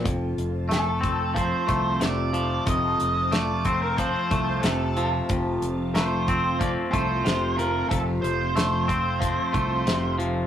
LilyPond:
<<
  \new Staff \with { instrumentName = "Lead electric guitar" } { \time 4/4 \key f \major \tempo 4 = 92 r4 a'4 c''4 d''4 | ees''4 d''8 c''16 bes'16 c''4 a'8. r16 | r4 c''4 d''8 c''4 bes'8 | a'8 c''2. r8 | }
  \new Staff \with { instrumentName = "String machine" } { \time 4/4 \key f \major <f c' f' a''>1~ | <f c' f' a''>1~ | <f c' f' a''>1~ | <f c' f' a''>1 | }
  \new Staff \with { instrumentName = "Clean electric guitar" } { \clef bass \time 4/4 \key f \major f,4 a8 c'8 f8 a8 c8 f8 | f,4 a8 c'8 f8 a8 c8 f8 | f,4 a8 c'8 f8 a8 c8 f8 | f,4 a8 c'8 f8 a8 c8 f8 | }
  \new Staff \with { instrumentName = "Fingered electric bass" } { \clef bass \time 4/4 \key f \major f,,8 f,,2 c,8 f,,4 | f,,8 f,,2 c,8 f,,4 | f,,8 f,,2 c,8 f,,4 | f,,8 f,,2 c,8 f,,4 | }
  \new DrumStaff \with { instrumentName = "Drums" } \drummode { \time 4/4 <hh bd>8 hh8 <hh sn>8 <hh bd>8 <hh bd>8 <hh bd>8 <hh sn>8 hh8 | <hh bd>8 hh8 <hh sn>8 <hh bd>8 <hh bd>8 <hh bd>8 <hh sn>8 hh8 | <hh bd>8 hh8 <hh sn>8 <hh bd>8 <hh bd>8 <hh bd>8 <hh sn>8 hh8 | <hh bd>8 hh8 <hh sn>8 <hh bd>8 <hh bd>8 <hh bd>8 <hh sn>8 hh8 | }
>>